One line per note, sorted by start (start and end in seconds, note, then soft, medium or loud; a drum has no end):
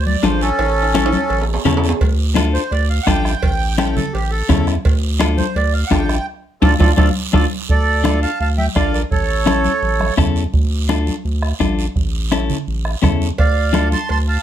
0.00 0.17 D2 loud
0.00 0.04 C#5 medium
0.06 0.23 D5 medium
0.06 high conga medium
0.23 0.52 A1 medium
0.23 0.48 D4 medium
0.23 0.49 F4 medium
0.23 0.49 A4 medium
0.23 0.41 C5 medium
0.23 cowbell medium
0.23 high conga medium
0.23 low timbale medium
0.23 short guiro medium
0.41 1.44 C#4 loud
0.41 1.45 A4 loud
0.41 short guiro medium
0.59 1.16 A1 medium
0.59 cowbell loud
0.59 high conga soft
0.59 high timbale medium
0.59 long guiro medium
0.83 high timbale medium
0.94 1.19 C#4 medium
0.94 1.20 E4 medium
0.94 1.20 A4 medium
0.94 cowbell medium
0.94 high conga loud
0.94 high timbale medium
0.94 short guiro medium
1.06 high timbale medium
1.13 high conga medium
1.13 short guiro medium
1.30 1.58 A1 loud
1.30 cowbell medium
1.30 high conga soft
1.30 long guiro medium
1.41 low timbale medium
1.54 low timbale medium
1.65 1.94 E2 medium
1.65 1.90 C#4 medium
1.65 1.91 E4 medium
1.65 1.91 A4 medium
1.65 cowbell medium
1.65 high conga medium
1.65 low conga medium
1.65 low timbale medium
1.65 short guiro medium
1.77 low timbale medium
1.84 short guiro medium
1.89 low timbale medium
2.01 2.58 D2 medium
2.01 bombo low medium
2.01 cowbell loud
2.01 high conga soft
2.01 long guiro medium
2.35 2.61 D4 medium
2.35 2.61 F4 medium
2.35 2.62 A4 medium
2.35 bombo rim medium
2.35 cowbell medium
2.35 high conga loud
2.35 short guiro medium
2.54 2.71 C5 medium
2.54 short guiro medium
2.71 3.00 D2 loud
2.71 2.89 D5 medium
2.71 cowbell medium
2.71 high conga soft
2.71 long guiro medium
2.90 3.07 F5 medium
3.03 3.32 D4 medium
3.03 3.06 F#5 medium
3.03 high conga medium
3.07 3.36 A1 medium
3.07 3.32 F4 medium
3.07 3.33 A4 medium
3.07 3.76 G5 medium
3.07 bombo low medium
3.07 bombo rim medium
3.07 cowbell medium
3.07 short guiro medium
3.25 bombo rim medium
3.25 short guiro medium
3.43 4.00 A1 medium
3.43 bombo low medium
3.43 cowbell loud
3.43 high conga soft
3.43 long guiro medium
3.78 4.03 C#4 medium
3.78 4.03 E4 medium
3.78 4.04 A4 medium
3.78 3.96 G5 loud
3.78 bombo rim medium
3.78 cowbell medium
3.78 high conga loud
3.78 short guiro medium
3.96 4.13 A4 medium
3.96 high conga medium
3.96 low conga medium
3.96 short guiro medium
4.13 4.43 A1 loud
4.13 4.31 G4 medium
4.13 cowbell medium
4.13 high conga soft
4.13 long guiro medium
4.31 4.66 A4 loud
4.49 4.78 E2 medium
4.49 4.74 C#4 medium
4.49 4.75 E4 medium
4.49 4.75 A4 medium
4.49 bombo low medium
4.49 bombo rim medium
4.49 cowbell medium
4.49 high conga medium
4.49 low conga medium
4.49 low timbale medium
4.49 short guiro medium
4.67 bombo rim medium
4.67 short guiro medium
4.85 5.42 D2 loud
4.85 bombo low medium
4.85 cowbell medium
4.85 high conga soft
4.85 long guiro medium
5.20 5.45 D4 medium
5.20 5.45 F4 medium
5.20 5.46 A4 loud
5.20 bombo rim medium
5.20 cowbell medium
5.20 high conga loud
5.20 short guiro medium
5.38 5.55 C5 medium
5.38 high conga medium
5.38 short guiro medium
5.56 5.84 D2 loud
5.56 5.73 D5 medium
5.56 cowbell medium
5.56 high conga soft
5.56 long guiro medium
5.74 5.91 F5 medium
5.87 6.16 D4 medium
5.87 5.90 F#5 medium
5.87 high conga medium
5.91 6.20 A1 medium
5.91 6.17 F4 medium
5.91 6.17 A4 medium
5.91 6.26 G5 medium
5.91 bombo low medium
5.91 bombo rim medium
5.91 cowbell medium
5.91 low timbale medium
5.91 short guiro medium
6.09 bombo rim medium
6.09 short guiro medium
6.62 6.76 D2 loud
6.62 6.74 D4 loud
6.62 6.74 F4 loud
6.62 6.74 F4 medium
6.62 6.74 A4 loud
6.62 6.74 A4 medium
6.62 6.74 D5 loud
6.62 bombo low loud
6.62 high conga loud
6.62 high timbale loud
6.62 long guiro loud
6.79 6.94 D2 loud
6.79 6.91 D4 medium
6.79 6.91 F4 loud
6.79 6.91 A4 medium
6.79 6.92 A4 loud
6.79 6.91 D5 loud
6.79 bombo low loud
6.79 high conga medium
6.79 high timbale loud
6.79 long guiro loud
6.97 7.11 D2 loud
6.97 7.09 D4 loud
6.97 7.09 F4 medium
6.97 7.09 F4 loud
6.97 7.09 A4 medium
6.97 7.09 A4 loud
6.97 7.09 D5 loud
6.97 bombo low loud
6.97 high conga loud
6.97 high timbale medium
6.97 long guiro loud
7.33 7.47 D2 loud
7.33 7.45 D4 loud
7.33 7.45 F4 medium
7.33 7.45 A4 loud
7.33 7.45 D5 loud
7.33 bombo low loud
7.33 high conga loud
7.33 high timbale loud
7.33 long guiro loud
7.69 8.26 D2 medium
7.69 8.19 A4 medium
7.69 8.20 D5 loud
7.69 bombo low medium
7.69 high conga soft
7.69 long guiro medium
8.04 8.29 D4 medium
8.04 8.29 F4 medium
8.04 8.30 A4 medium
8.04 bombo rim medium
8.04 high conga loud
8.04 short guiro medium
8.22 8.39 F5 medium
8.22 8.39 A5 medium
8.22 short guiro medium
8.40 8.69 D2 loud
8.40 8.49 F5 medium
8.40 8.49 A5 loud
8.40 high conga soft
8.40 long guiro medium
8.58 8.66 E5 medium
8.58 8.66 G5 loud
8.58 high conga medium
8.75 9.04 A#1 medium
8.75 9.01 D4 medium
8.75 9.01 F4 medium
8.75 9.01 A4 medium
8.75 8.92 D5 medium
8.75 8.94 F5 medium
8.75 bombo low medium
8.75 bombo rim medium
8.75 high conga medium
8.75 short guiro medium
8.93 9.02 A#4 medium
8.93 9.01 D5 medium
8.93 short guiro medium
9.11 9.68 A1 medium
9.11 10.14 A4 medium
9.11 10.14 C#5 medium
9.11 bombo low medium
9.11 high conga soft
9.11 long guiro medium
9.46 9.72 C#4 medium
9.46 9.72 E4 medium
9.46 9.72 A4 medium
9.46 bombo rim medium
9.46 high conga loud
9.46 short guiro medium
9.64 high conga medium
9.64 short guiro medium
9.82 10.11 A1 loud
9.82 high conga soft
9.82 long guiro medium
10.00 bombo rim medium
10.00 high conga medium
10.17 10.47 E2 medium
10.17 10.43 C#4 medium
10.17 10.43 E4 medium
10.17 10.43 A4 loud
10.17 bombo low medium
10.17 bombo rim medium
10.17 high conga medium
10.17 low conga medium
10.17 short guiro medium
10.36 short guiro medium
10.53 11.10 D2 loud
10.53 bombo low medium
10.53 high conga soft
10.53 long guiro medium
10.89 11.14 D4 medium
10.89 11.14 F4 medium
10.89 11.15 A4 loud
10.89 bombo rim medium
10.89 high conga loud
10.89 short guiro medium
11.07 high conga medium
11.07 short guiro medium
11.25 11.53 D2 loud
11.25 high conga soft
11.25 long guiro medium
11.42 bombo rim medium
11.60 11.89 A1 medium
11.60 11.85 D4 medium
11.60 11.85 F4 medium
11.60 11.86 A4 medium
11.60 bombo low medium
11.60 bombo rim medium
11.60 high conga medium
11.60 short guiro medium
11.79 short guiro medium
11.96 12.53 A1 loud
11.96 bombo low medium
11.96 high conga soft
11.96 long guiro medium
12.32 12.56 C#4 medium
12.32 12.57 E4 medium
12.32 12.57 A4 medium
12.32 bombo rim medium
12.32 high conga medium
12.32 short guiro medium
12.50 low conga medium
12.50 short guiro medium
12.68 12.96 A1 medium
12.68 high conga soft
12.68 long guiro medium
12.85 bombo rim medium
13.02 13.31 E2 medium
13.02 13.27 C#4 medium
13.02 13.28 E4 medium
13.02 13.28 A4 medium
13.02 bombo low medium
13.02 bombo rim medium
13.02 high conga medium
13.02 low conga medium
13.02 short guiro medium
13.22 short guiro medium
13.38 13.95 D2 medium
13.38 13.88 D5 medium
13.38 13.88 F5 medium
13.38 bombo low medium
13.38 cowbell loud
13.38 high conga soft
13.38 long guiro medium
13.73 13.98 D4 medium
13.73 13.98 F4 medium
13.73 13.99 A4 medium
13.73 bombo rim medium
13.73 cowbell medium
13.73 high conga loud
13.73 short guiro medium
13.92 14.09 A5 medium
13.92 14.09 C6 loud
13.92 high conga medium
13.92 short guiro medium
14.09 14.38 D2 loud
14.09 14.18 A5 medium
14.09 14.18 C6 loud
14.09 cowbell medium
14.09 high conga soft
14.09 long guiro medium
14.28 14.43 F5 medium
14.28 14.43 A5 medium